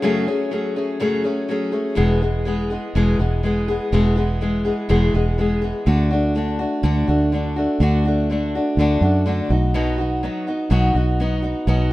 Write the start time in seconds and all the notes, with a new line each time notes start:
0.02 F#2 C#3 F#3 A3 C#4 G#4
0.27 F#3 A3 C#4 G#4
0.51 F#3 A3 C#4 G#4
0.76 F#3 A3 C#4 G#4
1.00 F#2 C#3 F#3 A3 C#4 G#4
1.24 F#3 A3 C#4 G#4
1.49 F#3 A3 C#4 G#4
1.72 F#3 A3 C#4 G#4
1.95 E1 E2 B2 E3 G#3 B3 G#4
2.22 E3 G#3 B3 G#4
2.45 E3 G#3 B3 G#4
2.70 E3 G#3 B3 G#4
2.95 E1 E2 B2 E3 G#3 B3 G#4
3.19 E1 E3 G#3 B3 G#4
3.43 E3 G#3 B3 G#4
3.68 E3 G#3 B3 G#4
3.92 E1 E2 B2 E3 G#3 B3 G#4
4.16 E3 G#3 B3 G#4
4.41 E3 G#3 B3 G#4
4.65 E3 G#3 B3 G#4
4.89 E1 E2 B2 E3 G#3 B3 G#4
5.14 E1 E3 G#3 B3 G#4
5.38 E3 G#3 B3 G#4
5.62 E3 G#3 B3 G#4
5.86 D2 D3 A3 D4 F#4
6.11 A3 D4 F#4
6.35 D3 A3 D4 F#4
6.59 A3 D4 F#4
6.83 D2 D3 A3 D4 F#4
7.07 D2 A3 D4 F#4
7.32 D3 A3 D4 F#4
7.56 A3 D4 F#4
7.80 D2 D3 A3 D4 F#4
8.05 A3 D4 F#4
8.30 D3 A3 D4 F#4
8.55 A3 D4 F#4
8.77 D2 D3 A3 D4 F#4
9.01 F#2 A3 D4 F#4
9.26 D3 A3 D4 F#4
9.50 B1 B3 D#4 F#4
9.74 B2 F#3 B3 D#4 F#4
9.98 B3 D#4 F#4
10.23 F#3 B3 D#4 F#4
10.47 B3 D#4 F#4
10.70 B1 B2 F#3 B3 D#4 F#4
10.94 B1 B3 D#4 F#4
11.20 F#3 B3 D#4 F#4
11.42 B3 D#4 F#4
11.67 B1 B2 F#3 B3 D#4 F#4